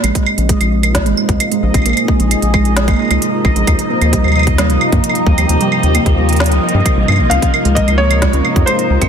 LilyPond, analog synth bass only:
\new Staff \with { instrumentName = "Analog synth bass" } { \clef bass \time 4/4 \key bes \minor \tempo 4 = 132 bes,,16 r8 bes,,16 r16 bes,,4 aes,,16 r16 des,16 r8 bes,,16 bes,,16 | bes,,16 r8 bes,,16 r16 bes,,4 aes,,16 r16 des,16 r8 bes,,16 bes,,16 | ees,16 r8 ees,16 r16 ees,4 des,16 r16 g,16 r8 ees,16 ees,16 | ees,16 r8 ees,16 r16 ees,4 des,16 r16 g,16 r16 bes,,16 g,16 bes,,16 |
des,16 r8 des,16 r16 des,8. r16 des,16 r16 f,16 r8 des,16 des,16 | }